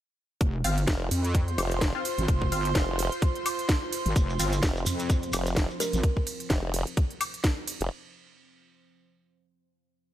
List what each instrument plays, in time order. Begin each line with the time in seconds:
0.41 wobble bass F1, analog synth pad F4, kick, closed hi-hat
0.64 wobble bass G1, synth stab C4 F4 F5, open hi-hat, ride
0.71 analog synth pad C5 C6
0.78 closed hi-hat
0.87 wobble bass F1, kick, snare, closed hi-hat
1.11 wobble bass F2, open hi-hat, ride
1.24 closed hi-hat
1.35 kick, closed hi-hat
1.48 closed hi-hat
1.58 wobble bass F1, open hi-hat, ride, high woodblock
1.71 closed hi-hat
1.81 kick, snare, closed hi-hat
1.95 synth stab C4 F4 F5
2.05 open hi-hat, ride
2.18 wobble bass G#1, closed hi-hat
2.28 wobble bass F1, kick, closed hi-hat
2.42 kick
2.52 wobble bass G1, synth stab C4 F4 F5, open hi-hat, ride
2.65 closed hi-hat
2.75 wobble bass F1, kick, snare, closed hi-hat
2.99 open hi-hat, ride
3.12 closed hi-hat
3.22 kick, closed hi-hat
3.35 closed hi-hat
3.46 open hi-hat, ride, high woodblock
3.59 closed hi-hat
3.69 kick, snare, closed hi-hat
3.93 open hi-hat, ride
4.06 wobble bass G#1, closed hi-hat
4.16 wobble bass F1, ambient pad F3 C4 C5, kick, closed hi-hat, shekere
4.30 shekere
4.39 wobble bass G1, synth stab C4 F4 F5, open hi-hat, ride, shekere
4.53 closed hi-hat, shekere
4.63 wobble bass F1, kick, snare, closed hi-hat, shekere
4.76 shekere
4.86 wobble bass F2, open hi-hat, ride, shekere
4.99 closed hi-hat, shekere
5.10 kick, closed hi-hat, shekere
5.22 closed hi-hat, shekere
5.33 wobble bass F1, open hi-hat, ride, high woodblock, shekere
5.46 closed hi-hat, shekere
5.56 kick, snare, closed hi-hat, shekere
5.70 shekere
5.80 kalimba A#4, open hi-hat, ride, shekere
5.93 wobble bass G#1, closed hi-hat, shekere
6.03 kick, closed hi-hat
6.17 kick
6.27 open hi-hat, ride
6.40 closed hi-hat
6.50 wobble bass F1, kick, snare, closed hi-hat
6.74 open hi-hat, ride
6.87 closed hi-hat
6.97 kick, closed hi-hat
7.10 closed hi-hat
7.21 open hi-hat, ride, high woodblock
7.34 closed hi-hat
7.44 kick, snare, closed hi-hat
7.67 open hi-hat, ride
7.81 wobble bass F1, closed hi-hat